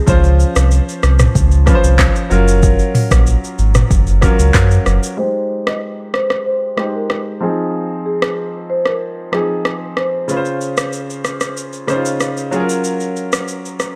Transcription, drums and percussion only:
0.07 kick, shaker
0.24 shaker
0.40 shaker
0.56 cross-stick, shaker
0.71 shaker
0.89 shaker
1.03 cross-stick, shaker
1.19 cross-stick, mid tom, shaker
1.35 kick, shaker
1.52 shaker
1.67 kick, cross-stick, shaker
1.84 shaker
1.99 kick, cross-stick, clap, shaker
2.16 shaker
2.31 shaker
2.48 shaker
2.63 kick, shaker
2.79 shaker
2.95 mid tom, open hi-hat, shaker
3.11 kick, cross-stick, shaker
3.27 shaker
3.44 shaker
3.59 shaker
3.75 cross-stick, mid tom, shaker
3.91 kick, shaker
4.07 shaker
4.22 kick, cross-stick, shaker
4.39 shaker
4.54 kick, cross-stick, clap, shaker
4.71 shaker
4.86 cross-stick, shaker
5.03 shaker
5.67 cross-stick
6.14 cross-stick
6.30 cross-stick
6.78 cross-stick
7.10 cross-stick
8.22 cross-stick
8.86 cross-stick
9.33 cross-stick
9.65 cross-stick
9.97 cross-stick
10.29 shaker
10.45 shaker
10.61 shaker
10.77 cross-stick, shaker
10.93 shaker
11.10 shaker
11.24 cross-stick, shaker
11.41 cross-stick, shaker
11.57 shaker
11.73 shaker
11.88 cross-stick, shaker
12.05 shaker
12.20 cross-stick, shaker
12.37 shaker
12.52 shaker
12.69 shaker
12.84 shaker
13.00 shaker
13.16 shaker
13.32 cross-stick, shaker
13.48 shaker
13.65 shaker
13.80 cross-stick, shaker

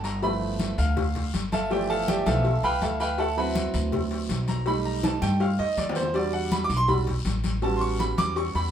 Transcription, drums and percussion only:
0.04 cowbell, high conga, short guiro
0.22 cowbell, high conga, long guiro
0.41 high conga
0.59 cowbell, high conga, short guiro
0.78 short guiro
0.97 cowbell, high conga, low conga, long guiro
1.15 cowbell, high conga, low conga
1.34 cowbell, high conga, short guiro
1.52 cowbell, high conga, short guiro
1.71 cowbell, high conga, long guiro
1.90 high conga
2.08 cowbell, high conga, short guiro
2.26 cowbell, high conga, short guiro
2.44 cowbell, high conga, long guiro
2.63 cowbell, high conga
2.82 cowbell, high conga, short guiro
3.00 cowbell, high conga, short guiro
3.18 cowbell, high conga, long guiro
3.37 high conga
3.55 cowbell, high conga, short guiro
3.74 high conga, short guiro
3.92 cowbell, high conga, low conga, long guiro
4.11 cowbell, high conga
4.29 cowbell, high conga, short guiro
4.48 cowbell, high conga, short guiro
4.66 cowbell, high conga, long guiro
4.86 high conga
5.03 cowbell, high bongo, high conga, short guiro
5.22 cowbell, high conga, short guiro
5.40 cowbell, high conga, long guiro
5.59 cowbell, high conga
5.77 cowbell, high conga, short guiro
5.89 low bongo
5.95 cowbell, high conga, short guiro
6.02 low bongo
6.14 cowbell, high conga, long guiro
6.33 high conga
6.51 cowbell, high conga, short guiro
6.69 high conga, short guiro
6.88 cowbell, high conga, low conga, long guiro
7.07 cowbell, high conga, low conga
7.25 cowbell, high conga, short guiro
7.44 cowbell, high conga, short guiro
7.62 cowbell, high conga, long guiro
7.81 high conga
7.99 cowbell, high conga, short guiro
8.18 cowbell, high conga, short guiro
8.36 cowbell, high conga, long guiro
8.55 cowbell, high conga

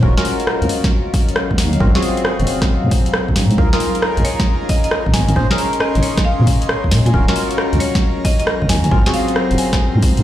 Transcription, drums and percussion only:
0.03 kick
0.18 snare
0.25 open hi-hat
0.40 closed hi-hat
0.47 cross-stick
0.62 closed hi-hat
0.69 open hi-hat
0.84 kick, snare, closed hi-hat
1.14 kick, open hi-hat
1.29 closed hi-hat
1.36 cross-stick
1.51 kick
1.58 snare, open hi-hat
1.73 closed hi-hat
1.80 kick
1.95 snare
2.02 open hi-hat
2.17 closed hi-hat
2.25 cross-stick
2.40 closed hi-hat
2.47 open hi-hat
2.62 kick, cross-stick, snare, closed hi-hat
2.91 kick, open hi-hat
3.06 closed hi-hat
3.14 cross-stick
3.28 kick
3.36 snare, open hi-hat
3.51 closed hi-hat
3.58 kick
3.73 snare
3.80 open hi-hat
3.95 closed hi-hat
4.02 cross-stick
4.17 closed hi-hat
4.25 open hi-hat
4.40 kick, snare, closed hi-hat
4.69 kick, open hi-hat
4.84 closed hi-hat
4.91 cross-stick
5.06 kick
5.14 snare, open hi-hat
5.28 closed hi-hat
5.36 kick
5.51 snare
5.58 open hi-hat
5.73 closed hi-hat
5.80 cross-stick
5.95 closed hi-hat
6.03 open hi-hat
6.17 kick, cross-stick, snare, closed hi-hat
6.47 kick, open hi-hat
6.62 closed hi-hat
6.69 cross-stick
6.84 kick
6.91 snare, open hi-hat
7.06 closed hi-hat
7.14 kick
7.28 snare
7.36 open hi-hat
7.51 closed hi-hat
7.58 cross-stick
7.73 closed hi-hat
7.80 open hi-hat
7.95 kick, snare, closed hi-hat
8.25 kick, open hi-hat
8.40 closed hi-hat
8.47 cross-stick
8.62 kick
8.69 snare, open hi-hat
8.84 closed hi-hat
8.91 kick
9.06 snare
9.14 open hi-hat
9.28 closed hi-hat
9.36 cross-stick
9.51 closed hi-hat
9.58 open hi-hat
9.73 kick, cross-stick, snare, closed hi-hat
10.02 kick, open hi-hat
10.17 closed hi-hat

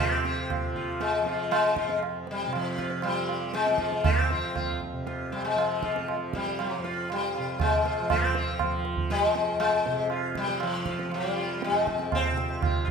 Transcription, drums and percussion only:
0.25 tabla te
0.50 tabla na, tabla ge
0.75 tabla ge
1.00 tabla te
1.26 tabla te
1.52 tabla na
1.76 tabla ke
1.89 tabla te
2.03 tabla na
2.27 tabla te
2.53 tabla na
2.79 tabla ke
2.90 tabla te
3.02 tabla na
3.29 tabla na
3.54 tabla te
3.67 tabla te
3.78 tabla ke
3.92 tabla te
4.04 tabla na, tabla ge
4.30 tabla te
4.56 tabla na, tabla ge
4.81 tabla ge
5.07 tabla te
5.33 tabla te
5.58 tabla na
5.83 tabla ke
5.96 tabla te
6.08 tabla na
6.33 tabla ke
6.46 tabla te
6.59 tabla na
6.85 tabla te
7.10 tabla na
7.35 tabla na
7.60 tabla na, tabla ge
7.86 tabla te
8.10 tabla na, tabla ge
8.35 tabla te
8.59 tabla na, tabla ge
8.85 tabla te
8.97 tabla ge
9.10 tabla te
9.36 tabla te
9.60 tabla na
9.86 tabla te
10.10 tabla na
10.35 tabla ke
10.48 tabla te
10.60 tabla na
10.86 tabla ke
10.99 tabla te
11.12 tabla na
11.37 tabla na
11.62 tabla te
11.74 tabla te
11.87 tabla ke
11.99 tabla te
12.12 tabla na, tabla ge
12.37 tabla te
12.62 tabla na, tabla ge

